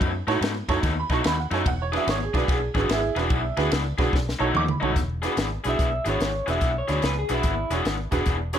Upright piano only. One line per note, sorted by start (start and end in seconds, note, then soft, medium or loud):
0.27 0.35 D#4 loud
0.27 0.35 F#4 medium
0.27 0.35 A4 medium
0.27 0.35 C#5 loud
0.68 0.76 D#4 loud
0.68 0.76 F#4 medium
0.68 0.77 A4 medium
0.68 0.77 C#5 loud
1.00 1.12 B5 loud
1.10 1.18 D#4 medium
1.10 1.18 F#4 medium
1.10 1.18 A4 medium
1.10 1.18 D#5 medium
1.10 1.26 C#6 loud
1.27 1.39 B5 loud
1.40 1.53 F#5 medium
1.52 1.59 D#4 medium
1.52 1.59 F#4 medium
1.52 1.59 A4 medium
1.52 1.60 C#5 medium
1.52 1.66 G#5 medium
1.67 1.80 F#5 loud
1.82 1.94 C#5 medium
1.92 2.00 D4 medium
1.92 2.00 F#4 medium
1.92 2.00 G#4 medium
1.92 2.00 B4 medium
1.97 2.09 E5 medium
2.10 2.22 C#5 loud
2.23 2.33 G#4 medium
2.34 2.41 D4 medium
2.34 2.42 F#4 medium
2.34 2.41 G#4 medium
2.34 2.50 B4 medium
2.34 2.42 D5 medium
2.52 2.64 G#4 medium
2.75 2.82 D4 medium
2.75 2.78 F#4 medium
2.75 2.83 G#4 medium
2.75 2.83 B4 medium
2.79 2.91 F#4 medium
2.92 3.69 E4 loud
2.92 3.15 G#4 loud
3.16 3.24 D4 medium
3.16 3.24 F#4 medium
3.16 3.24 G#4 medium
3.16 3.24 B4 medium
3.57 3.65 D4 loud
3.57 3.65 F#4 medium
3.57 3.65 G#4 medium
3.57 3.65 B4 loud
3.99 4.06 D4 medium
3.99 4.06 F#4 medium
3.99 4.06 G#4 medium
3.99 4.06 B4 loud
4.40 4.47 D#4 medium
4.40 4.47 F#4 medium
4.40 4.48 A4 medium
4.40 4.48 C#5 loud
4.57 4.69 D6 loud
4.71 4.96 B5 medium
4.82 4.89 D#4 medium
4.82 4.89 F#4 medium
4.82 4.89 A4 medium
4.82 4.90 C#5 medium
5.24 5.31 D4 medium
5.24 5.31 F#4 medium
5.24 5.31 G#4 medium
5.24 5.31 B4 medium
5.66 5.72 D4 medium
5.66 5.72 F#4 medium
5.66 5.72 G#4 medium
5.66 5.72 B4 medium
6.06 6.13 D4 medium
6.06 6.13 F#4 medium
6.06 6.13 G#4 medium
6.06 6.14 B4 medium
6.47 6.54 D4 medium
6.47 6.54 F#4 medium
6.47 6.55 G#4 medium
6.47 6.55 B4 medium
6.88 6.95 D4 medium
6.88 6.96 F#4 medium
6.88 6.96 G#4 medium
6.88 6.96 D5 medium
7.30 7.37 D4 medium
7.30 7.37 F#4 medium
7.30 7.37 G#4 medium
7.30 7.37 B4 medium
7.71 7.78 D4 medium
7.71 7.78 F#4 medium
7.71 7.79 G#4 medium
7.71 7.79 C#5 medium
8.11 8.19 D4 medium
8.11 8.19 F#4 medium
8.11 8.19 G#4 medium
8.11 8.20 B4 loud
8.53 8.59 D4 medium
8.53 8.59 F#4 medium
8.53 8.59 G#4 medium
8.53 8.59 C#5 medium